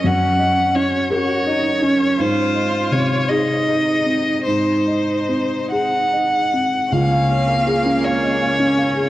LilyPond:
<<
  \new Staff \with { instrumentName = "Violin" } { \time 6/8 \key aes \mixolydian \tempo 4. = 54 ges''4 des''8 des''4. | c''4 des''8 ees''4. | c''4. ges''4. | f''4. des''4. | }
  \new Staff \with { instrumentName = "Felt piano" } { \time 6/8 \key aes \mixolydian <ges, des'>8 ees''8 des'8 bes'8 ees''8 des'8 | aes,8 ees''8 c8 aes'8 ees''8 c'8 | aes,8 ees''8 c'8 aes'8 ees''8 c'8 | des,16 f''16 des''16 f''16 aes'16 des'16 f''16 ees''16 f''16 des'16 f''16 aes'16 | }
  \new Staff \with { instrumentName = "Cello" } { \time 6/8 \key aes \mixolydian des'4. ges'8 ees'8 des'8 | f'4. ees'4. | ees'2~ ees'16 r8. | bes2. | }
  \new Staff \with { instrumentName = "Viola" } { \time 6/8 \key aes \mixolydian r2. | r2. | r2. | des'4. des'4. | }
>>